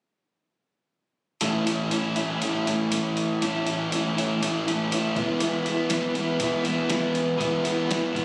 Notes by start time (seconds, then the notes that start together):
1.41 A2 E3 A3 C#4 E4, closed hi-hat
1.66 A3 C#4 E4, closed hi-hat
1.91 E3 A3 C#4 E4, closed hi-hat
2.16 C#4 E4, closed hi-hat
2.20 A3
2.42 A2 E3 A3 C#4 E4, closed hi-hat
2.66 A3 C#4 E4, closed hi-hat
2.91 E3 A3 C#4 E4, closed hi-hat
3.17 closed hi-hat
3.42 A2 E3 A3 C#4 E4, closed hi-hat
3.67 A3 C#4 E4, closed hi-hat
3.92 E3 A3 C#4 E4, closed hi-hat
4.17 A3 C#4 E4, closed hi-hat
4.40 A2 E3 A3 C#4, closed hi-hat
4.45 E4
4.67 A3 C#4 E4, closed hi-hat
4.91 E3 A3 C#4 E4, closed hi-hat
5.16 E3 G#3 B3 E4, kick, closed hi-hat
5.40 E3 G#3 B3 E4, closed hi-hat
5.66 G#3 B3 E4, closed hi-hat
5.89 E3 G#3 B3 E4, snare, closed hi-hat
6.14 G#3 B3 E4, closed hi-hat
6.40 E3 G#3 B3, kick, closed hi-hat
6.44 E4
6.64 G#3 B3 E4, closed hi-hat
6.89 E3 G#3 B3 E4, snare, closed hi-hat
7.15 closed hi-hat
7.38 E3 G#3 B3, kick, closed hi-hat
7.42 E4
7.64 G#3 B3 E4, closed hi-hat
7.88 E3 G#3 B3 E4, snare, closed hi-hat
8.13 G#3 B3 E4, kick, closed hi-hat